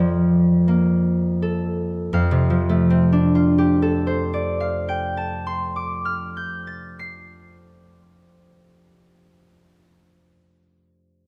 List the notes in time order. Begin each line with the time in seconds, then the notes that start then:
Already playing: F2 A#3 A4 D5 F5 G5
0.00 F3
0.68 A#3
1.42 A4
2.13 F2 F5
2.31 C3
2.50 F3
2.69 A3
2.90 C4
3.12 D4
3.35 F4
3.58 G4
3.82 A4
4.07 C5
4.34 D5
4.60 F5
4.89 G5
5.17 A5
5.47 C6
5.76 D6
6.05 F6
6.37 G6
6.67 A6
6.99 C7